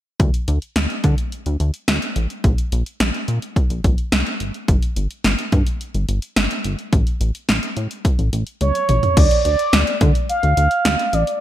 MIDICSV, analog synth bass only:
0, 0, Header, 1, 2, 480
1, 0, Start_track
1, 0, Key_signature, -1, "minor"
1, 0, Tempo, 560748
1, 169, Time_signature, 4, 2, 24, 8
1, 9763, End_track
2, 0, Start_track
2, 0, Title_t, "Analog synth bass"
2, 0, Program_c, 0, 38
2, 169, Note_on_c, 0, 38, 108
2, 263, Note_off_c, 0, 38, 0
2, 409, Note_on_c, 0, 38, 94
2, 503, Note_off_c, 0, 38, 0
2, 649, Note_on_c, 0, 38, 98
2, 743, Note_off_c, 0, 38, 0
2, 889, Note_on_c, 0, 50, 97
2, 983, Note_off_c, 0, 50, 0
2, 1249, Note_on_c, 0, 38, 94
2, 1343, Note_off_c, 0, 38, 0
2, 1370, Note_on_c, 0, 38, 94
2, 1463, Note_off_c, 0, 38, 0
2, 1609, Note_on_c, 0, 38, 100
2, 1703, Note_off_c, 0, 38, 0
2, 1850, Note_on_c, 0, 33, 89
2, 1943, Note_off_c, 0, 33, 0
2, 2089, Note_on_c, 0, 34, 107
2, 2183, Note_off_c, 0, 34, 0
2, 2330, Note_on_c, 0, 34, 94
2, 2423, Note_off_c, 0, 34, 0
2, 2569, Note_on_c, 0, 34, 101
2, 2663, Note_off_c, 0, 34, 0
2, 2809, Note_on_c, 0, 46, 93
2, 2903, Note_off_c, 0, 46, 0
2, 3169, Note_on_c, 0, 34, 90
2, 3263, Note_off_c, 0, 34, 0
2, 3291, Note_on_c, 0, 34, 105
2, 3384, Note_off_c, 0, 34, 0
2, 3529, Note_on_c, 0, 36, 88
2, 3623, Note_off_c, 0, 36, 0
2, 3769, Note_on_c, 0, 31, 87
2, 3863, Note_off_c, 0, 31, 0
2, 4009, Note_on_c, 0, 31, 104
2, 4103, Note_off_c, 0, 31, 0
2, 4249, Note_on_c, 0, 31, 94
2, 4343, Note_off_c, 0, 31, 0
2, 4489, Note_on_c, 0, 31, 107
2, 4583, Note_off_c, 0, 31, 0
2, 4729, Note_on_c, 0, 43, 104
2, 4823, Note_off_c, 0, 43, 0
2, 5089, Note_on_c, 0, 31, 96
2, 5183, Note_off_c, 0, 31, 0
2, 5210, Note_on_c, 0, 31, 93
2, 5304, Note_off_c, 0, 31, 0
2, 5449, Note_on_c, 0, 31, 93
2, 5543, Note_off_c, 0, 31, 0
2, 5689, Note_on_c, 0, 31, 101
2, 5783, Note_off_c, 0, 31, 0
2, 5929, Note_on_c, 0, 33, 101
2, 6023, Note_off_c, 0, 33, 0
2, 6169, Note_on_c, 0, 33, 95
2, 6263, Note_off_c, 0, 33, 0
2, 6409, Note_on_c, 0, 33, 99
2, 6503, Note_off_c, 0, 33, 0
2, 6649, Note_on_c, 0, 45, 99
2, 6743, Note_off_c, 0, 45, 0
2, 7009, Note_on_c, 0, 33, 92
2, 7103, Note_off_c, 0, 33, 0
2, 7129, Note_on_c, 0, 33, 105
2, 7223, Note_off_c, 0, 33, 0
2, 7369, Note_on_c, 0, 37, 91
2, 7463, Note_off_c, 0, 37, 0
2, 7610, Note_on_c, 0, 33, 89
2, 7704, Note_off_c, 0, 33, 0
2, 7849, Note_on_c, 0, 38, 113
2, 7943, Note_off_c, 0, 38, 0
2, 8090, Note_on_c, 0, 38, 98
2, 8183, Note_off_c, 0, 38, 0
2, 8330, Note_on_c, 0, 38, 109
2, 8423, Note_off_c, 0, 38, 0
2, 8569, Note_on_c, 0, 50, 103
2, 8663, Note_off_c, 0, 50, 0
2, 8930, Note_on_c, 0, 38, 102
2, 9024, Note_off_c, 0, 38, 0
2, 9049, Note_on_c, 0, 38, 98
2, 9143, Note_off_c, 0, 38, 0
2, 9290, Note_on_c, 0, 38, 110
2, 9383, Note_off_c, 0, 38, 0
2, 9529, Note_on_c, 0, 33, 96
2, 9623, Note_off_c, 0, 33, 0
2, 9763, End_track
0, 0, End_of_file